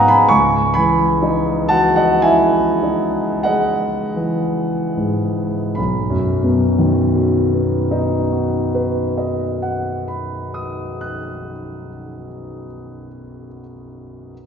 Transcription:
Already playing: C#2 G#2 G#3 B3 D#4 G#4 F5 F#5 G#5 A#5 B5 C#6 D#6
0.08 G#5 B5
0.28 C#2 G#5 C#6
0.74 E3 G#5 B5
1.22 D#4
1.69 F#4 F#5 A5
1.96 D#5 F#5
2.22 E4 E5 G#5
2.83 D#4
3.43 G#3 D#5 F#5
4.16 E3
4.97 G#2
5.75 B1 B5
6.10 F#2
6.44 B2
6.79 D#3
7.15 F#3
7.54 B3
7.91 D#4
8.32 F#4
8.75 B4
9.18 D#5
9.62 F#5
10.08 B5
10.54 D#6
11.01 F#6

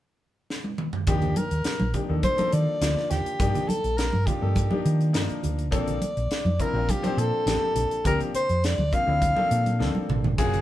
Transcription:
0.50 snare
0.64 high tom
0.78 mid tom
0.93 floor tom
1.07 D#2 F3 A#3 D4 D#4 G4, kick, closed hi-hat
1.22 closed hi-hat, low conga
1.36 A#4, closed hi-hat, high conga
1.51 D#2, closed hi-hat
1.64 D#4 G4, muted fingered electric bass stroke, snare, closed hi-hat
1.80 A#1, high conga
1.94 F3 A#3 D4 D#4 G4, kick, closed hi-hat, low conga
2.09 D#2 F3 A#3 D4 D#4 A4
2.23 C5, kick, closed hi-hat, high conga
2.37 F3 A#3 D4 D#4 A4, muted fingered electric bass stroke, closed hi-hat, high conga
2.52 D#3 D5, closed hi-hat
2.81 D2 F3 A#3 D4 D#4 F4, snare, closed hi-hat
2.97 muted fingered electric bass stroke, snare
3.11 D#2 G4, snare, closed hi-hat, low conga
3.26 closed hi-hat
3.39 G2 F3 A#3 D4 D#4 G4, kick, closed hi-hat
3.55 closed hi-hat, low conga
3.68 D#4 A4, muted fingered electric bass stroke, closed hi-hat, high conga
3.84 A#1, closed hi-hat
3.97 D#4 G4 A#4, snare, closed hi-hat
4.13 G2, high conga
4.26 F3 A#3 D4 D#4 F4 G4, kick, closed hi-hat, low conga
4.41 G2 F3 A#3 D4 D#4 A4
4.56 kick, closed hi-hat, high conga
4.70 F3 A#3 D4 D#4 G4, high conga
4.86 D#3, closed hi-hat
5.01 closed hi-hat
5.13 G2 F3 A#3 D4 D#4 A#4, snare, closed hi-hat
5.30 muted fingered electric bass stroke, closed hi-hat
5.43 D2, closed hi-hat, low conga
5.59 closed hi-hat
5.71 A#1 F3 A#3 C4 D4 A4 D5, kick, closed hi-hat
5.87 closed hi-hat, low conga
6.01 D4 A4, closed hi-hat, high conga
6.17 A#1, closed hi-hat
6.31 D4 A4, snare, closed hi-hat
6.45 F2, high conga
6.59 F3 A#3 C4 D4 E4 A#4, muted fingered electric bass stroke, kick, closed hi-hat, low conga
6.73 A#1 F3 A#3 C4 D4 F4
6.89 G4, kick, closed hi-hat, high conga
7.02 F3 A#3 C4 D4 C5, muted fingered electric bass stroke, closed hi-hat, high conga
7.17 A#2 A4, closed hi-hat
7.46 A1 F3 A#3 C4 D4 G4, snare, closed hi-hat
7.75 A#1, closed hi-hat, low conga
7.91 closed hi-hat
8.05 D2 F3 A#3 C4 D4 G4 A#4, kick, closed hi-hat
8.20 closed hi-hat, low conga
8.34 D4 A#4 C5, muted fingered electric bass stroke, closed hi-hat
8.49 F2, closed hi-hat
8.63 D4 A4 D5, snare, closed hi-hat
8.78 D2, high conga
8.92 F3 A#3 C4 D4 F4 F5, kick, closed hi-hat
9.07 D2 F3 A#3 C4 D4 E4
9.22 kick, closed hi-hat, high conga
9.36 F3 A#3 C4 D4 A4, high conga
9.51 A#2, closed hi-hat
9.66 closed hi-hat, high conga
9.79 D2 F3 A#3 C4 D4 A4, snare, high conga
9.95 muted fingered electric bass stroke, high tom, high conga
10.09 A1, mid tom, low conga
10.24 floor tom, low conga
10.38 F#1 F#3 A#3 C#4 F4 G#4, kick, closed hi-hat, crash
10.54 closed hi-hat, low conga

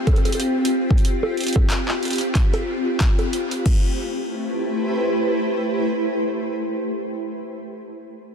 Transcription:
Already playing: C4 F4 G4 G5
0.07 kick, closed hi-hat, high bongo
0.13 closed hi-hat, high bongo
0.18 high bongo
0.25 closed hi-hat, high bongo
0.29 closed hi-hat, high bongo
0.35 high bongo
0.40 closed hi-hat
0.65 closed hi-hat
0.91 kick
0.98 closed hi-hat
1.05 closed hi-hat
1.23 high bongo
1.37 closed hi-hat
1.40 closed hi-hat
1.44 closed hi-hat
1.47 closed hi-hat
1.48 closed hi-hat
1.53 kick, closed hi-hat, high bongo
1.70 clap, closed hi-hat
1.88 clap
2.03 closed hi-hat
2.05 closed hi-hat
2.08 closed hi-hat
2.10 closed hi-hat
2.13 closed hi-hat
2.16 closed hi-hat
2.18 closed hi-hat
2.21 closed hi-hat
2.35 kick, clap, closed hi-hat
2.54 closed hi-hat, high bongo
3.00 kick, clap, closed hi-hat
3.19 closed hi-hat, high bongo
3.33 closed hi-hat
3.51 closed hi-hat
3.66 A3, kick, crash
3.77 E4
3.87 G4
3.95 B4
4.06 C5

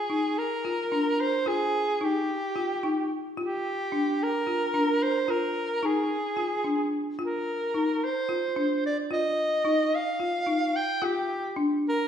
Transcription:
Already playing: G#4
0.10 D#4
0.38 A#4
0.65 F4
0.92 D4
1.20 C5
1.46 F4 G#4
2.01 D#4 G4
2.56 F4
2.83 D#4
3.37 F4 G4
3.92 D4
4.23 A#4
4.47 F4
4.74 D4
5.03 C5
5.28 F4 A#4
5.83 D#4 G#4
6.37 F4
6.64 D4
7.19 F4
7.24 A#4
7.74 D#4
8.04 C5
8.29 F4
8.56 D4
8.86 D5
9.11 F4 D#5
9.65 D#4
9.95 F5
10.20 F4
10.46 D#4
10.76 G5
11.02 F4 G4
11.56 D4
11.89 A#4

